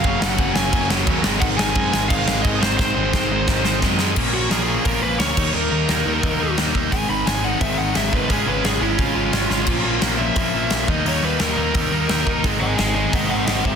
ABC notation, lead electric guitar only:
X:1
M:4/4
L:1/16
Q:1/4=174
K:Abmix
V:1 name="Lead electric guitar"
f3 g3 a4 z6 | g2 a6 f4 e2 c2 | c12 z4 | z2 G2 A4 B2 _c2 d4 |
B12 z4 | a2 _c'2 a2 g2 _f2 g2 f2 _c2 | A2 _c2 A2 _F2 =F8- | F4 z2 _f8 e2 |
d2 _c2 B12 | z2 [ea]2 [ea]2 [ea]2 [eg]2 [eg]2 [eg]2 [c_f]2 |]